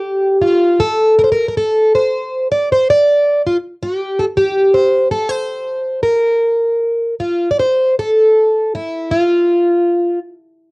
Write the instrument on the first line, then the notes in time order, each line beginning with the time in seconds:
twelve-string acoustic guitar
Already playing: G4
0.42 F4
0.80 A4
1.19 A#4
1.24 C5
1.32 A#4
1.49 A#4
1.57 A4
1.95 C5
2.52 D5
2.72 C5
2.90 D5
3.47 F4
3.83 G4
4.19 A4
4.37 G4
4.74 C5
5.11 A4
5.29 C5
6.03 A#4
7.20 F4
7.51 D5
7.59 C5
7.99 A4
8.75 E4
9.11 F4